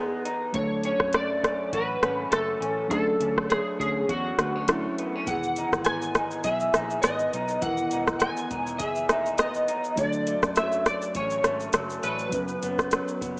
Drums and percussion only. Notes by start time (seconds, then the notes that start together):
0.25 closed hi-hat
0.54 kick, closed hi-hat
0.83 closed hi-hat
1.00 kick, cross-stick
1.13 cross-stick, closed hi-hat
1.43 kick, cross-stick, closed hi-hat
1.73 kick, closed hi-hat
2.03 cross-stick, closed hi-hat
2.32 cross-stick, closed hi-hat
2.62 closed hi-hat
2.91 kick, closed hi-hat
3.21 closed hi-hat
3.37 kick, cross-stick
3.50 cross-stick, closed hi-hat
3.80 kick, closed hi-hat
4.09 kick, closed hi-hat
4.39 cross-stick, closed hi-hat
4.68 cross-stick, closed hi-hat
4.98 closed hi-hat
5.27 kick, closed hi-hat, shaker
5.43 shaker
5.56 closed hi-hat, shaker
5.72 kick, cross-stick, shaker
5.85 cross-stick, closed hi-hat, shaker
6.02 shaker
6.15 kick, cross-stick, closed hi-hat, shaker
6.31 shaker
6.44 kick, closed hi-hat, shaker
6.60 shaker
6.74 cross-stick, closed hi-hat, shaker
6.90 shaker
7.03 cross-stick, closed hi-hat, shaker
7.19 shaker
7.33 closed hi-hat, shaker
7.48 shaker
7.62 kick, closed hi-hat, shaker
7.77 shaker
7.91 closed hi-hat, shaker
8.07 kick, cross-stick, shaker
8.20 cross-stick, closed hi-hat, shaker
8.37 shaker
8.51 kick, closed hi-hat, shaker
8.67 shaker
8.79 kick, closed hi-hat, shaker
8.95 shaker
9.09 cross-stick, closed hi-hat, shaker
9.26 shaker
9.38 cross-stick, closed hi-hat, shaker
9.54 shaker
9.68 closed hi-hat, shaker
9.84 shaker
9.97 kick, closed hi-hat, shaker
10.13 shaker
10.27 closed hi-hat, shaker
10.43 kick, cross-stick, shaker
10.56 cross-stick, closed hi-hat, shaker
10.72 shaker
10.86 kick, cross-stick, closed hi-hat, shaker
11.02 shaker
11.15 kick, closed hi-hat, shaker
11.30 shaker
11.44 cross-stick, closed hi-hat, shaker
11.60 shaker
11.73 cross-stick, closed hi-hat, shaker
11.90 shaker
12.03 closed hi-hat, shaker
12.19 shaker
12.32 kick, closed hi-hat, shaker
12.48 shaker
12.63 closed hi-hat, shaker
12.78 kick, cross-stick, shaker
12.91 cross-stick, closed hi-hat, shaker
13.08 shaker
13.21 kick, closed hi-hat, shaker